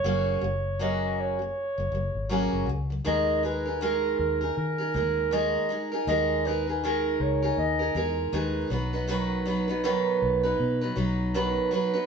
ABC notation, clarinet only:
X:1
M:4/4
L:1/16
Q:"Swing 16ths" 1/4=80
K:D#phr
V:1 name="Clarinet"
c4 d2 c8 z2 | d2 B2 A2 A2 A4 d3 z | d2 B2 A2 c2 d2 z2 B3 z | z16 |]